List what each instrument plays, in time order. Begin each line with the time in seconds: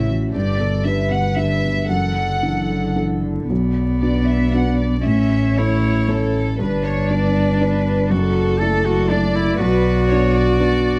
Already playing: double bass A1, felt piano A2 C#4 E4 C#5, viola E4
0.08 cello E3, viola F#4
0.32 double bass G1, felt piano G2, cello D3, viola G4, violin section D5
0.58 cello B2, viola A4
0.84 cello D3, felt piano D4 G4 B4, viola B4, violin section E5
1.10 cello B2, violin section F#5
1.36 cello D3, felt piano D4 G4 B4, violin section E5
1.63 cello B2
1.88 double bass F#1, felt piano F#2, cello E3, viola A4, violin section F#5
2.16 cello D3
2.43 cello E3, felt piano D4 E4 A4
2.71 cello D3
2.96 cello E3, felt piano D4 E4 A4
3.23 cello D3
3.49 felt piano B1, double bass B1, cello B3, viola D5
4.01 felt piano D4 F#4 B4, violin section D5
4.27 violin section E5
4.53 felt piano D4 F#4 B4, violin section F#5
4.78 violin section D5
5.03 double bass A1, felt piano A2, cello C#4, viola C#5, violin section E5
5.57 felt piano C#4 A4 C#5, cello E4, violin section C#5
6.09 felt piano C#4 A4 C#5, violin section A4
6.59 double bass G1, felt piano G2, cello D4, viola B4, violin section B4
6.84 violin section C#5
7.09 felt piano B3 D4 D5, violin section D5
7.60 felt piano B3 D4 D5, violin section B4
8.10 double bass F#1, felt piano F#2, cello F#4, violin section A4, viola D5
8.60 felt piano A3 E4 D5, cello A4
8.85 cello F#4
9.10 felt piano A3 E4 D5, cello D4, violin section D5
9.35 cello E4
9.58 felt piano B1, double bass B1, cello F#4, violin section B4
10.08 felt piano B3 D4 D5, violin section C#5
10.34 violin section D5
10.60 felt piano B3 D4 D5